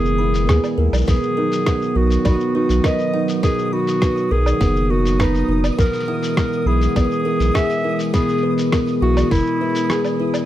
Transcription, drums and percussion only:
0.05 shaker soft
0.34 open hi-hat soft
0.34 shaker medium
0.49 kick loud
0.49 cross-stick medium
0.49 open hi-hat soft
0.49 shaker medium
0.64 open hi-hat soft
0.64 low woodblock medium
0.64 shaker soft
0.93 open hi-hat soft
0.93 low woodblock medium
0.93 shaker medium
0.97 shaker medium
1.01 shaker soft
1.05 kick loud
1.05 open hi-hat medium
1.05 shaker soft
1.08 shaker medium
1.12 shaker soft
1.16 shaker soft
1.20 shaker soft
1.23 shaker soft
1.52 open hi-hat soft
1.52 shaker medium
1.66 kick loud
1.66 cross-stick medium
1.66 open hi-hat soft
1.66 shaker medium
1.82 shaker soft
2.10 open hi-hat soft
2.10 shaker medium
2.25 kick loud
2.25 open hi-hat medium
2.25 low woodblock medium
2.25 shaker soft
2.40 shaker soft
2.69 open hi-hat soft
2.69 shaker medium
2.84 kick loud
2.84 cross-stick medium
2.84 open hi-hat soft
2.84 shaker soft
2.99 open hi-hat soft
2.99 shaker soft
3.28 open hi-hat soft
3.28 shaker medium
3.43 kick loud
3.43 open hi-hat medium
3.43 shaker medium
3.59 shaker soft
3.87 open hi-hat soft
3.87 shaker medium
4.02 kick loud
4.02 cross-stick medium
4.02 open hi-hat medium
4.02 shaker soft
4.17 shaker soft
4.46 low woodblock medium
4.46 shaker medium
4.61 kick loud
4.61 open hi-hat medium
4.61 shaker medium
4.76 shaker soft
5.05 open hi-hat soft
5.05 shaker medium
5.20 kick loud
5.20 cross-stick medium
5.20 open hi-hat medium
5.20 shaker soft
5.35 open hi-hat soft
5.35 shaker soft
5.64 open hi-hat soft
5.64 low woodblock medium
5.64 shaker medium
5.79 kick loud
5.79 open hi-hat soft
5.79 shaker medium
5.86 open hi-hat soft
5.93 open hi-hat soft
5.93 shaker soft
6.00 open hi-hat soft
6.23 open hi-hat soft
6.23 shaker medium
6.37 kick loud
6.37 cross-stick loud
6.37 open hi-hat medium
6.37 shaker medium
6.53 shaker soft
6.81 open hi-hat soft
6.81 shaker medium
6.96 kick loud
6.96 open hi-hat medium
6.96 low woodblock medium
6.96 shaker medium
7.11 shaker soft
7.40 open hi-hat medium
7.40 shaker medium
7.55 kick loud
7.55 cross-stick medium
7.55 open hi-hat soft
7.55 shaker soft
7.70 open hi-hat soft
7.70 shaker soft
7.99 open hi-hat soft
7.99 shaker medium
8.14 kick loud
8.14 open hi-hat medium
8.14 shaker medium
8.28 open hi-hat soft
8.28 shaker soft
8.33 open hi-hat soft
8.38 open hi-hat soft
8.58 open hi-hat soft
8.58 shaker medium
8.72 kick loud
8.72 cross-stick medium
8.72 open hi-hat medium
8.72 shaker medium
8.87 open hi-hat soft
8.87 shaker soft
9.17 open hi-hat soft
9.17 low woodblock medium
9.17 shaker medium
9.31 kick loud
9.31 open hi-hat medium
9.31 shaker soft
9.34 shaker soft
9.37 shaker soft
9.39 shaker soft
9.44 shaker soft
9.47 shaker soft
9.75 open hi-hat soft
9.75 shaker medium
9.90 cross-stick medium
9.90 open hi-hat medium
9.90 shaker soft
10.04 open hi-hat soft
10.04 low woodblock medium
10.04 shaker soft
10.34 open hi-hat soft
10.34 low woodblock medium
10.34 shaker medium

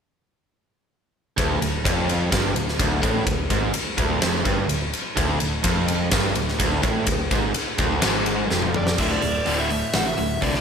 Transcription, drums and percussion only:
1.38 kick loud
1.38 ride loud
1.62 ride medium
1.85 kick loud
1.85 ride loud
2.09 ride medium
2.32 kick loud
2.32 snare loud
2.32 ride medium
2.56 ride medium
2.68 snare soft
2.79 kick loud
2.79 ride loud
3.03 kick loud
3.03 ride medium
3.27 kick loud
3.27 ride medium
3.50 kick loud
3.50 ride medium
3.74 ride loud
3.98 kick loud
3.98 ride medium
4.22 snare loud
4.22 ride medium
4.45 kick loud
4.45 ride medium
4.69 ride medium
4.93 ride medium
5.17 kick medium
5.17 ride loud
5.40 ride medium
5.64 kick loud
5.64 ride loud
5.88 ride medium
6.11 kick loud
6.11 snare loud
6.11 ride loud
6.35 ride medium
6.48 snare soft
6.60 kick loud
6.60 ride loud
6.83 kick loud
6.83 ride medium
7.07 kick loud
7.07 ride loud
7.31 kick loud
7.31 ride medium
7.54 ride loud
7.78 kick loud
7.78 ride medium
8.02 snare loud
8.02 ride loud
8.26 ride medium
8.51 snare medium
8.62 mid tom medium
8.74 mid tom medium
8.87 snare medium
8.98 kick loud
8.98 crash loud
9.22 open hi-hat medium
9.46 open hi-hat medium
9.70 open hi-hat medium
9.93 snare loud
9.93 open hi-hat medium
10.18 open hi-hat soft
10.42 kick medium
10.42 open hi-hat medium
10.54 snare soft

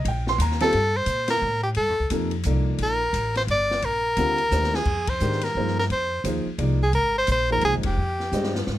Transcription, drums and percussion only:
0.05 ride medium
0.27 snare medium
0.40 hi-hat pedal medium
0.40 ride medium
0.51 snare soft
0.60 snare medium
0.60 ride medium
0.72 ride medium
1.06 hi-hat pedal medium
1.06 ride medium
1.28 snare medium
1.28 ride medium
1.74 ride medium
2.10 hi-hat pedal soft
2.10 ride medium
2.31 ride soft
2.43 hi-hat pedal medium
2.43 ride medium
2.78 ride medium
3.14 hi-hat pedal soft
3.14 ride medium
3.35 snare soft
3.35 ride soft
3.48 ride medium
3.71 snare soft
3.82 ride medium
4.17 hi-hat pedal soft
4.17 ride medium
4.38 ride soft
4.51 snare soft
4.51 hi-hat pedal medium
4.63 snare soft
4.74 snare medium
4.85 kick medium
4.85 crash medium
5.07 kick medium
5.07 ride medium
5.20 hi-hat pedal medium
5.31 snare soft
5.41 snare soft
5.41 ride medium
5.67 snare soft
5.79 snare soft
5.90 ride soft
6.24 hi-hat pedal soft
6.24 ride medium
6.59 ride medium
6.93 ride medium
7.27 hi-hat pedal medium
7.27 ride medium
7.61 ride medium
7.83 kick medium
7.83 ride medium
8.20 snare soft
8.32 snare soft
8.32 hi-hat pedal medium
8.43 snare medium
8.55 snare medium
8.66 snare medium

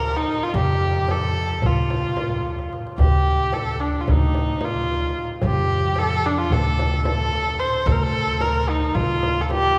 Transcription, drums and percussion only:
0.54 darbuka dum loud
0.54 frame drum medium
0.83 darbuka ka soft
1.08 darbuka tek medium
1.08 frame drum medium
1.62 frame drum medium
1.62 darbuka dum medium
1.90 darbuka tek medium
1.90 frame drum medium
2.17 darbuka tek medium
2.17 frame drum medium
2.45 darbuka tek soft
2.59 darbuka ka medium
2.73 darbuka tek medium
2.87 darbuka ka medium
2.99 frame drum medium
2.99 darbuka dum medium
3.53 darbuka tek medium
3.53 frame drum medium
4.07 darbuka dum medium
4.07 frame drum medium
4.34 darbuka tek medium
4.34 frame drum medium
4.61 darbuka tek medium
4.61 frame drum medium
5.42 frame drum medium
5.42 darbuka dum medium
5.96 darbuka tek medium
5.96 frame drum medium
6.51 darbuka dum medium
6.51 frame drum medium
6.77 darbuka tek medium
6.77 frame drum medium
7.05 darbuka tek medium
7.05 frame drum medium
7.87 frame drum medium
7.87 darbuka dum medium
8.41 darbuka tek medium
8.41 frame drum medium
8.95 darbuka dum medium
8.95 frame drum medium
9.23 darbuka tek medium
9.23 frame drum medium
9.50 darbuka tek medium
9.50 frame drum medium

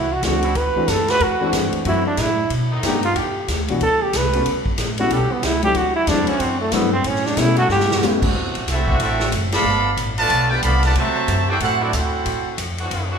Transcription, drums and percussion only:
0.23 kick soft
0.23 snare medium
0.23 hi-hat pedal medium
0.23 ride medium
0.43 ride medium
0.55 kick soft
0.55 ride medium
0.88 kick soft
0.88 snare medium
0.88 hi-hat pedal medium
0.88 ride medium
1.08 snare medium
1.08 ride soft
1.20 kick soft
1.20 ride medium
1.53 kick soft
1.53 snare medium
1.53 hi-hat pedal medium
1.53 ride medium
1.73 ride medium
1.85 kick soft
1.85 ride medium
2.17 kick soft
2.17 snare medium
2.17 hi-hat pedal medium
2.17 ride medium
2.50 kick soft
2.50 ride medium
2.83 kick soft
2.83 snare medium
2.83 hi-hat pedal medium
2.83 ride medium
3.03 ride medium
3.16 kick soft
3.16 ride medium
3.48 kick soft
3.48 snare medium
3.48 hi-hat pedal medium
3.48 ride medium
3.68 ride medium
3.81 kick soft
3.81 ride medium
4.13 kick soft
4.13 snare medium
4.13 hi-hat pedal medium
4.13 ride medium
4.33 ride medium
4.46 kick soft
4.46 ride medium
4.66 kick medium
4.78 kick soft
4.78 snare medium
4.78 hi-hat pedal medium
4.78 ride medium
4.98 ride medium
5.10 kick soft
5.10 ride medium
5.43 kick soft
5.43 snare medium
5.43 hi-hat pedal medium
5.43 ride medium
5.63 ride medium
5.75 kick soft
5.75 ride medium
6.07 kick soft
6.07 snare medium
6.07 hi-hat pedal medium
6.07 ride medium
6.27 ride medium
6.40 kick soft
6.40 ride medium
6.72 kick soft
6.72 snare medium
6.72 hi-hat pedal medium
6.72 ride medium
7.04 kick soft
7.04 ride medium
7.15 snare soft
7.26 snare medium
7.37 kick soft
7.37 snare medium
7.37 hi-hat pedal medium
7.37 ride medium
7.56 ride medium
7.69 snare medium
7.80 snare medium
7.91 snare loud
8.02 snare medium
8.02 hi-hat pedal medium
8.22 kick medium
8.22 crash medium
8.35 kick soft
8.55 ride medium
8.68 kick soft
8.68 snare soft
8.68 hi-hat pedal medium
8.68 ride medium
8.88 kick medium
9.00 kick soft
9.00 ride medium
9.20 snare medium
9.32 kick soft
9.32 hi-hat pedal medium
9.32 ride medium
9.52 snare loud
9.52 ride medium
9.97 kick soft
9.97 hi-hat pedal medium
9.97 ride medium
10.18 ride medium
10.30 kick soft
10.30 ride medium
10.62 kick soft
10.62 hi-hat pedal medium
10.62 ride medium
10.83 snare soft
10.83 ride medium
10.95 kick soft
10.95 ride medium
11.28 kick soft
11.28 hi-hat pedal medium
11.28 ride medium
11.60 kick soft
11.60 ride medium
11.93 kick soft
11.93 hi-hat pedal medium
11.93 ride medium
12.26 kick soft
12.26 ride medium
12.58 kick soft
12.58 hi-hat pedal medium
12.58 ride medium
12.78 ride medium
12.91 kick soft
12.91 ride medium

